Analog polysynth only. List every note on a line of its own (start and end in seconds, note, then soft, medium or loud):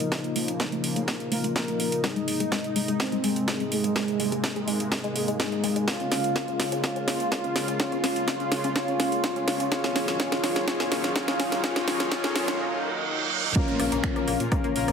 0.12 1.29 A#3 medium
0.12 1.29 F4 medium
0.12 1.29 A#4 medium
1.32 1.53 A#3 medium
1.32 1.53 F4 medium
1.32 1.53 A#4 medium
1.56 2.01 A#3 loud
1.56 2.01 F4 medium
1.56 2.01 A#4 loud
2.04 3.21 G#3 medium
2.04 3.21 D#4 medium
2.04 3.21 G#4 medium
3.24 3.45 G#3 medium
3.24 3.45 D#4 medium
3.24 3.45 G#4 medium
3.48 3.93 G#3 medium
3.48 3.93 D#4 medium
3.48 3.93 G#4 loud
3.96 5.13 G#3 medium
3.96 5.13 D#4 medium
3.96 5.13 G#4 medium
5.16 5.37 G#3 medium
5.16 5.37 D#4 medium
5.16 5.37 G#4 medium
5.40 5.85 G#3 medium
5.40 5.85 D#4 medium
5.40 5.85 G#4 loud
5.88 6.82 C#4 medium
5.88 6.82 G#4 medium
5.88 6.82 C#5 medium
6.84 7.78 C#4 medium
6.84 7.78 G#4 medium
6.84 7.78 C#5 medium
7.80 8.74 C#4 medium
7.80 8.74 G#4 medium
7.80 8.74 C#5 medium
8.76 9.70 C#4 medium
8.76 9.70 G#4 medium
8.76 9.70 C#5 medium
9.72 10.18 C#4 medium
9.72 10.18 G#4 medium
9.72 10.18 C#5 medium
10.20 10.66 C#4 medium
10.20 10.66 G#4 medium
10.20 10.66 C#5 medium
10.68 11.14 C#4 medium
10.68 11.14 G#4 medium
10.68 11.14 C#5 medium
11.16 11.62 C#4 medium
11.16 11.62 G#4 medium
11.16 11.62 C#5 medium
11.64 11.86 C#4 medium
11.64 11.86 G#4 medium
11.64 11.86 C#5 medium
11.88 12.10 C#4 medium
11.88 12.10 G#4 medium
11.88 12.10 C#5 medium
12.12 12.34 C#4 medium
12.12 12.34 G#4 medium
12.12 12.34 C#5 medium
12.36 12.58 C#4 medium
12.36 12.58 G#4 medium
12.36 12.58 C#5 medium
13.56 14.73 A#3 medium
13.56 14.73 F4 medium
13.56 14.73 A#4 medium
14.76 14.92 A#3 medium
14.76 14.92 F4 medium
14.76 14.92 A#4 medium